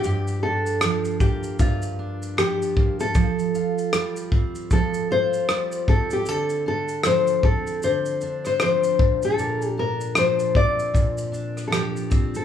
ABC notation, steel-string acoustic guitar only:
X:1
M:4/4
L:1/8
Q:"Swing 16ths" 1/4=77
K:F
V:1 name="Steel-string acoustic guitar"
[G,,G] D F, B, G,, D F, B, | [F,A] F G, C F, F G, C | [D,A] D F, C D, D F, B,, | [B,,B] D F, C B,, D F, C |]